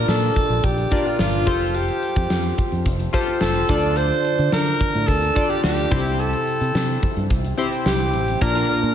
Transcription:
Already playing: A#2 D4 F4 A#4 D5
0.08 A#2 A4, snare
0.22 closed hi-hat
0.36 kick, closed hi-hat
0.50 A#1, closed hi-hat
0.63 A#1 G4, kick, closed hi-hat
0.77 closed hi-hat
0.91 D4 F4 A#4 D5, kick, closed hi-hat
1.05 F4, closed hi-hat
1.19 G1 F4, snare
1.33 closed hi-hat
1.46 F1 F4 G4 A4 C5, kick, closed hi-hat
1.61 closed hi-hat
1.75 G4, closed hi-hat
1.88 closed hi-hat
2.03 closed hi-hat
2.16 F2, kick, closed hi-hat
2.30 F2, snare
2.44 closed hi-hat
2.58 kick, closed hi-hat
2.72 F2, closed hi-hat
2.86 F1, kick, closed hi-hat
3.00 closed hi-hat
3.13 F4 G4 A4 C5, kick, closed hi-hat
3.27 closed hi-hat
3.41 F1 A4, snare
3.55 closed hi-hat
3.68 D2 D3 D4 F4 A4 D5, kick, closed hi-hat
3.83 closed hi-hat
3.96 C5, closed hi-hat
4.11 closed hi-hat
4.25 closed hi-hat
4.39 D3, closed hi-hat
4.52 D3 A#4, snare
4.66 closed hi-hat
4.80 kick, closed hi-hat
4.94 A2, closed hi-hat
5.07 D2 A4, kick, closed hi-hat
5.22 closed hi-hat
5.35 D4 F4 A4 D5, kick, closed hi-hat
5.50 G4, closed hi-hat
5.63 D2 G4, snare
5.78 closed hi-hat
5.91 C2 C3 C4 E4 G4 C5, kick, closed hi-hat
6.05 closed hi-hat
6.19 A4, closed hi-hat
6.33 closed hi-hat
6.47 closed hi-hat
6.61 C3, closed hi-hat
6.75 C3, snare
6.89 closed hi-hat
7.03 kick, closed hi-hat
7.16 G2, closed hi-hat
7.30 C2, kick, closed hi-hat
7.44 closed hi-hat
7.57 C4 E4 G4 C5, closed hi-hat
7.72 closed hi-hat
7.86 C2 G4, snare
8.00 closed hi-hat
8.13 A1, closed hi-hat
8.28 closed hi-hat
8.41 A#1 A#2 A#3 D4 F4 A#4, muted clean electric guitar stroke, kick, closed hi-hat
8.55 D4 F4 A#4, closed hi-hat
8.69 D4 F4 A#4, closed hi-hat
8.83 A#2, muted clean electric guitar stroke, closed hi-hat

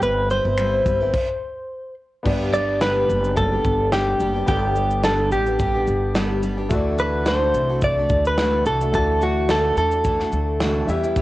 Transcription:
Already playing: G3 C4 E4 B4
0.02 G1 B4, shaker
0.30 G3 C4 E4 B4 C5, shaker
0.45 G1 C4 E4 B4
0.58 G3 C4 E4 B4, finger snap, shaker
0.85 G1 G3 C4 E4 B4, kick, shaker
1.01 C4 E4 B4
1.14 kick, crash
2.23 G1 G2 D3 G3 B3 D4 G4, kick, crash
2.27 D5
2.52 G3 B3 D4 G4 D5, shaker
2.81 G2 D3 G3 B3 D4 G4 B4, snare, shaker
3.08 F#1 G3 B3 D4 G4, shaker
3.23 G3 B3 D4 G4, shaker
3.36 G3 B3 D4 G4 A4, kick, shaker
3.51 G3 B3 D4 G4
3.64 G1, kick, shaker
3.92 G2 D3 G3 B3 D4 G4, snare, shaker
4.19 F#1 G3 B3 D4 G4, shaker
4.34 G3 B3 D4 G4
4.46 G1 G2 D3 G3 B3 D4 G4 A4, kick, shaker
4.75 G3 B3 D4 G4, shaker
4.91 shaker
5.03 G2 D3 G3 B3 D4 G4 A4, snare, shaker
5.31 A1 G3 B3 D4 G4, shaker
5.46 G3 B3 D4 G4, shaker
5.59 G3 B3 D4 G4, kick, shaker
5.74 G3 B3 D4 G4
5.87 G1, shaker
6.15 G2 D3 G3 B3 D4 G4, snare, shaker
6.42 G3 B3 D4 G4, shaker
6.57 G3 B3 D4 G4
6.69 D2 D3 E3 A3 D4 E4 F#4 D5, kick, shaker
6.98 E3 A3 D4 F#4 B4, shaker
7.25 D3 E3 A3 D4 F#4 C5, snare, shaker
7.54 C2 E3 A3 D4 F#4, shaker
7.69 A3 D4 F#4
7.81 E3 A3 D4 F#4 D5, kick, shaker
7.97 A3 D4 F#4
8.09 D2, kick, shaker
8.25 B4, shaker
8.38 D3 E3 A3 D4 F#4, snare, shaker
8.65 C2 E3 A3 D4 F#4 A4, shaker
8.81 A3 D4 F#4, shaker
8.92 D2 D3 E3 A3 D4 E4 F#4 A4, kick, shaker
8.96 D5
9.21 E3 A3 D4 F#4, shaker
9.49 D3 E3 A3 D4 F#4 A4, snare, shaker
9.77 E2 E3 A3 D4 F#4 A4, shaker
9.91 A3 D4 F#4, shaker
10.04 E3 A3 D4 F#4, kick, shaker
10.20 A3 D4 F#4, snare
10.32 D2, shaker
10.60 D3 E3 A3 D4 F#4, snare, shaker
10.86 E2 E3 G3 B3 E4 G4, shaker
10.90 E4 G4 E5
11.04 B3 E4 G4, shaker
11.16 E3 B3 E4 G4, kick, shaker

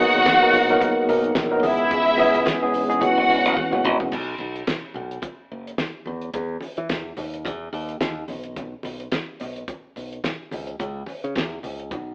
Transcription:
Already playing: F#4 A#4 F#5
0.00 F#3 A#3 B3 D#4 G#4
0.14 G#1, closed hi-hat
0.25 kick, snare, closed hi-hat, high conga
0.41 F#3 A#3 B3 D#4 A#4
0.53 A#1, open hi-hat, low conga
0.69 F#3 A#3 B3 D#4 A#4, closed hi-hat
0.80 kick, closed hi-hat, muted conga
1.09 B1 F#3 A#3 B3 D#4 A#4, open hi-hat
1.24 closed hi-hat
1.35 A#1, kick, snare, closed hi-hat, high conga
1.50 F#3 A#3 B3 D#4 A#4
1.62 C#2 E3 G#3 B3 C#4 E4 G#4 E5, open hi-hat, high conga
1.78 closed hi-hat
1.91 C#2, kick, closed hi-hat, muted conga
2.17 E3 G#3 B3 C#4 G#4, open hi-hat, muted conga
2.34 C#2, closed hi-hat
2.46 kick, snare, closed hi-hat, high conga
2.61 E3 G#3 B3 C#4 G#4
2.74 G#1, open hi-hat
2.88 E3 G#3 B3 C#4 G#4, closed hi-hat
3.01 F#1 E3 G#3 B3 C#4 F#4 F#5, kick, closed hi-hat, muted conga
3.17 F#1
3.28 E1 E3 G#3 B3 C#4 F#4, open hi-hat, muted conga
3.45 F#1, closed hi-hat
3.57 kick, high tom, high conga
3.71 F#1 E3 G#3 B3 C#4 F#4, mid tom
3.84 G#1, mid tom, high conga
4.00 A#1, floor tom
4.12 B1, kick, crash, muted conga
4.38 B1, muted conga
4.56 closed hi-hat
4.67 kick, snare, closed hi-hat, high conga
4.94 B1, low conga
5.11 closed hi-hat
5.22 kick, closed hi-hat, muted conga
5.52 F#1
5.67 closed hi-hat
5.78 kick, snare, closed hi-hat, high conga
6.06 E2, high conga
6.22 closed hi-hat
6.34 E2, kick, closed hi-hat, muted conga
6.61 open hi-hat, muted conga
6.77 E3, closed hi-hat
6.89 E2, kick, snare, closed hi-hat, high conga
7.17 D#2, open hi-hat, low conga
7.34 closed hi-hat
7.45 E2, kick, closed hi-hat, muted conga, low conga
7.73 D#2, open hi-hat
7.89 closed hi-hat
8.01 D#2, kick, snare, closed hi-hat, high conga
8.28 B1, open hi-hat, high conga
8.44 closed hi-hat
8.56 kick, closed hi-hat, muted conga
8.83 B1, open hi-hat, muted conga
9.00 closed hi-hat
9.12 kick, snare, closed hi-hat, high conga
9.40 B1, open hi-hat, low conga
9.56 closed hi-hat
9.68 kick, closed hi-hat, muted conga
9.96 B1, open hi-hat, muted conga
10.13 closed hi-hat
10.24 kick, snare, closed hi-hat, high conga
10.51 C#2, open hi-hat, high conga
10.67 closed hi-hat
10.79 C#2, kick, closed hi-hat, muted conga
11.06 open hi-hat, muted conga
11.24 C#3, closed hi-hat
11.36 E2, kick, snare, closed hi-hat, high conga
11.63 C#2, open hi-hat, low conga
11.80 closed hi-hat
11.91 B1, kick, closed hi-hat, muted conga, low conga

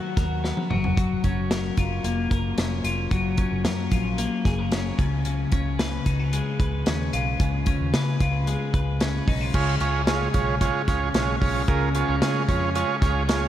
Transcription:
Already playing: D#3 F#3 B3 F#4 A#4
0.17 D#2 A#4, kick, snare, closed hi-hat
0.44 B3, snare
0.57 high tom
0.70 F#1 F#3, mid tom
0.84 floor tom
0.97 F#3, kick, closed hi-hat
1.24 F#1 C#4, kick, closed hi-hat
1.51 A#4, snare, closed hi-hat
1.77 F#1 F4, kick, closed hi-hat
2.04 F1 A#3, closed hi-hat
2.31 F#1 A#4, kick, closed hi-hat
2.57 F1 C#4, snare, closed hi-hat
2.84 F1 F4, closed hi-hat
3.11 F#1 F#3, kick, closed hi-hat
3.38 C#4, kick, closed hi-hat
3.51 F#1
3.64 F#2 A#4, snare, closed hi-hat
3.91 A#1 F4, kick, closed hi-hat
4.18 A#3, closed hi-hat
4.45 F#1 G#4, kick, snare, closed hi-hat
4.59 A#4
4.72 C#4, snare, closed hi-hat
4.98 C#2 C#3, kick, closed hi-hat
5.25 C#3, closed hi-hat
5.52 C#2 C#4, kick, closed hi-hat
5.79 B4, snare, closed hi-hat
6.06 C#2 D#4, kick, closed hi-hat
6.20 F4
6.33 G#3, closed hi-hat
6.60 C#2 B4, kick, closed hi-hat
6.86 D#2 C#4, snare, closed hi-hat
7.13 B1 F4, closed hi-hat
7.40 C#2 C#3, kick, closed hi-hat
7.66 C#4, kick, closed hi-hat
7.80 D#2
7.94 C#3 B4, snare, closed hi-hat
8.20 C#2 F4, kick, closed hi-hat
8.47 G#3, closed hi-hat
8.74 C#2 B4, kick, closed hi-hat
9.00 C#4, snare, closed hi-hat
9.28 B1 D#4, kick, open hi-hat
9.41 F4
9.54 C#2 C#3 F4 G#4 C#5, kick, crash
9.80 C#2 C#4 F4 G#4 C#5, closed hi-hat
10.07 G#3 F4 G#4 C#5, snare, closed hi-hat
10.34 B1 C#4 F4 G#4 C#5, kick, closed hi-hat
10.61 G#3 F4 G#4 C#5, kick, closed hi-hat
10.88 C#2 C#4 F4 G#4 C#5, kick, snare, closed hi-hat
11.14 B1 G#3 F4 G#4 C#5, snare, closed hi-hat
11.41 B1 C#4 F4 G#4 C#5, kick, open hi-hat
11.68 C#2 C#3 F4 G#4 A#4, kick, closed hi-hat
11.95 B3 F4 G#4 C#5, closed hi-hat
12.08 C#2 C#4
12.21 C#3 G#3 F4 G#4 C#5, snare, closed hi-hat
12.49 F2 C#4 F4 G#4 C#5, kick, closed hi-hat
12.75 G#3 F4 G#4 C#5, closed hi-hat
13.02 C#2 C#4 F4 G#4 C#5, kick, snare, closed hi-hat
13.28 G#3 F4 G#4 C#5, snare, closed hi-hat

